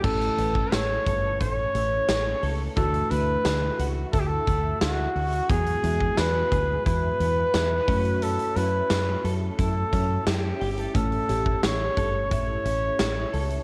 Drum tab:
CC |x---------------|----------------|----------------|----------------|
HH |-xx-x-x-x-x-x-o-|xxx-x-x-x-x-x-ox|xxx-x-x-x-x-x-ox|xxx-x-x-x-x-x-ox|
TB |----x-------x---|----x-------x---|----x-------x---|----x-------x---|
SD |----o-------o---|----o-------o---|----o-------o---|----o-------o---|
BD |o--o--o-o-------|o-------o-o-----|o--o--o-o-----o-|--------o-o-----|

CC |----------------|
HH |xxx-x-x-x-x-x-ox|
TB |----x-------x---|
SD |----o-------o---|
BD |o--o--o-o-------|